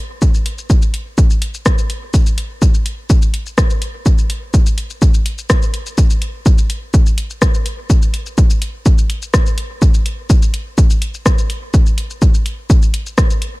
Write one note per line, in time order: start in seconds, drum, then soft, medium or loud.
0.22 kick loud
0.22 shaker medium
0.34 shaker soft
0.46 closed hi-hat medium
0.58 shaker soft
0.70 kick loud
0.70 shaker medium
0.82 shaker soft
0.94 closed hi-hat medium
1.18 kick loud
1.18 shaker medium
1.30 shaker soft
1.42 closed hi-hat medium
1.54 shaker soft
1.66 kick loud
1.66 cross-stick medium
1.66 shaker medium
1.78 shaker soft
1.90 closed hi-hat medium
2.14 kick loud
2.14 shaker medium
2.26 shaker soft
2.38 closed hi-hat medium
2.62 kick loud
2.62 shaker medium
2.74 shaker soft
2.86 closed hi-hat medium
3.10 kick loud
3.10 shaker medium
3.22 shaker soft
3.34 closed hi-hat medium
3.46 shaker soft
3.58 kick loud
3.58 cross-stick loud
3.58 shaker medium
3.70 shaker soft
3.82 closed hi-hat medium
4.06 kick loud
4.06 shaker medium
4.18 shaker soft
4.30 closed hi-hat medium
4.54 kick loud
4.54 shaker medium
4.66 shaker soft
4.78 closed hi-hat medium
4.90 shaker soft
5.02 kick loud
5.02 shaker medium
5.14 shaker soft
5.26 closed hi-hat medium
5.38 shaker soft
5.50 kick loud
5.50 cross-stick loud
5.50 shaker medium
5.62 shaker soft
5.74 closed hi-hat medium
5.86 shaker soft
5.98 kick loud
5.98 shaker medium
6.10 shaker soft
6.22 closed hi-hat medium
6.46 kick loud
6.46 shaker medium
6.58 shaker soft
6.70 closed hi-hat medium
6.94 kick loud
6.94 shaker medium
7.06 shaker soft
7.18 closed hi-hat medium
7.30 shaker soft
7.42 kick loud
7.42 cross-stick loud
7.42 shaker medium
7.54 shaker soft
7.66 closed hi-hat medium
7.90 kick loud
7.90 shaker medium
8.02 shaker soft
8.14 closed hi-hat medium
8.26 shaker soft
8.38 kick loud
8.38 shaker medium
8.50 shaker soft
8.62 closed hi-hat medium
8.86 kick loud
8.86 shaker medium
8.98 shaker soft
9.10 closed hi-hat medium
9.22 shaker soft
9.34 kick loud
9.34 cross-stick loud
9.34 shaker medium
9.46 shaker soft
9.58 closed hi-hat medium
9.82 kick loud
9.82 shaker medium
9.94 shaker soft
10.06 closed hi-hat medium
10.30 kick loud
10.30 shaker medium
10.42 shaker soft
10.54 closed hi-hat medium
10.78 kick loud
10.78 shaker medium
10.90 shaker soft
11.02 closed hi-hat medium
11.14 shaker soft
11.26 kick loud
11.26 cross-stick medium
11.26 shaker medium
11.38 shaker soft
11.50 closed hi-hat medium
11.74 kick loud
11.74 shaker medium
11.86 shaker soft
11.98 closed hi-hat medium
12.10 shaker soft
12.22 kick loud
12.22 shaker medium
12.34 shaker soft
12.46 closed hi-hat medium
12.70 kick loud
12.70 shaker medium
12.82 shaker soft
12.94 closed hi-hat loud
13.06 shaker soft
13.18 kick loud
13.18 cross-stick medium
13.18 shaker medium
13.30 shaker soft
13.42 closed hi-hat medium